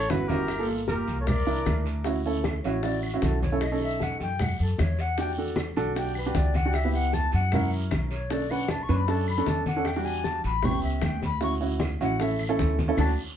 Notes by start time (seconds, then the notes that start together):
Already playing: A4 C#5
0.09 G1 C#4 E4 F#4 B4, high bongo, low bongo, high conga, short guiro, maracas
0.28 C#4 E4 F#4 G4 A#4, high conga, short guiro, maracas
0.48 high bongo, high conga, long guiro, claves, maracas
0.59 A#3 F4 A4
0.68 high bongo, high conga, maracas
0.88 A#3 F4 G4 A#4, high bongo, high conga, short guiro, maracas
1.08 C2, high bongo, high conga, short guiro, maracas
1.20 A4 C#5
1.26 A#4 D5, high bongo, high conga, low conga, long guiro, claves, maracas
1.47 C2 D4 E4 A#4, high conga, maracas
1.66 D2, high bongo, low bongo, high conga, short guiro, claves, maracas
1.86 high bongo, short guiro, maracas
2.04 C#4 E4 F#4, high bongo, high conga, long guiro, maracas
2.25 C#4 E4 A4, high conga, maracas
2.44 high bongo, high conga, short guiro, claves, maracas
2.63 A1 C#4 E4 F#4 C#5, high conga, short guiro, maracas
2.83 C#4 E4 F#4 D5, high bongo, high conga, long guiro, maracas
3.03 F#4, high conga, claves, maracas
3.14 C#4 E4 F#4
3.22 B1 A4, high bongo, low bongo, high conga, short guiro, maracas
3.42 C#5, high conga, short guiro, maracas
3.52 C#4 E4 A4
3.61 D#5, high bongo, high conga, long guiro, claves, maracas
3.72 C#4 D#4 A4
3.80 E5, high bongo, high conga, maracas
4.00 F#5, high bongo, high conga, short guiro, maracas
4.20 F#2 G5, high bongo, high conga, short guiro, maracas
4.39 F#5, high bongo, high conga, low conga, long guiro, claves, maracas
4.60 F#2 A4, high conga, maracas
4.78 E2 C#5, high bongo, low bongo, high conga, short guiro, claves, maracas
4.98 F#5, high bongo, short guiro, maracas
5.17 D4 F#4 G4 G5, high bongo, high conga, long guiro, maracas
5.37 D4 F#4 A4, high conga, maracas
5.56 high bongo, high conga, short guiro, claves, maracas
5.76 B1 D4 F#4 A4, high conga, short guiro, maracas
5.95 D4 F#4 G4 G5, high bongo, high conga, long guiro, maracas
6.15 B4, high conga, claves, maracas
6.26 D4 F#4 G4
6.34 C#2 D5, high bongo, low bongo, high conga, short guiro, maracas
6.54 F#5, high conga, short guiro, maracas
6.65 D4 F#4 G4
6.73 E5, high bongo, high conga, long guiro, claves, maracas
6.84 B3 E4 G4
6.93 F#5, high bongo, high conga, maracas
7.13 A5, high bongo, high conga, short guiro, maracas
7.32 F#2 F#5, high bongo, high conga, short guiro, maracas
7.52 C#4 E4 A#4, high bongo, high conga, low conga, long guiro, claves, maracas
7.72 high conga, maracas
7.91 B1, high bongo, low bongo, high conga, short guiro, claves, maracas
8.11 C#5, high bongo, short guiro, maracas
8.30 C#4 D4 A4 D5, high bongo, high conga, long guiro, maracas
8.50 C#4 D4 B4 F#5, high conga, maracas
8.68 A5, high bongo, high conga, short guiro, claves, maracas
8.82 C#6
8.88 F#2 C#4 D4 B4, high conga, short guiro, maracas
8.96 B5
9.07 C#4 D4 A4 A5, high bongo, high conga, long guiro, maracas
9.28 B5, high conga, claves, maracas
9.37 C#4 D4 A4
9.46 E2 A5, high bongo, low bongo, high conga, short guiro, maracas
9.66 F#5, high conga, short guiro, maracas
9.76 C#4 D4 A4
9.85 G5, high bongo, high conga, long guiro, claves, maracas
9.96 G3 D4 F#4
10.04 G#5, high bongo, high conga, maracas
10.24 A5, high bongo, high conga, short guiro, maracas
10.44 A1 B5, high bongo, high conga, short guiro, maracas
10.63 B3 C#4 G4 C#6, high bongo, high conga, low conga, long guiro, claves, maracas
10.83 C#2 E5, high conga, maracas
11.02 D2 G5, high bongo, low bongo, high conga, short guiro, claves, maracas
11.22 B5, high bongo, high conga, short guiro, maracas
11.41 C#4 E4 F#4 C#6, high bongo, high conga, long guiro, maracas
11.60 C#4 E4 F#4, high conga, maracas
11.80 high bongo, high conga, short guiro, claves, maracas
12.00 A1 C#4 E4 F#4 F#5, high conga, short guiro, maracas
12.19 C#4 E4 A4 E5, high bongo, high conga, long guiro, maracas
12.39 high conga, claves, maracas
12.49 C#4 E4 A4
12.59 D2, high bongo, low bongo, high conga, short guiro, maracas
12.79 high conga, short guiro, maracas
12.88 C#4 E4 A4
12.97 D2 C#4 D4 F#4 A5, low bongo, high conga, long guiro, claves, maracas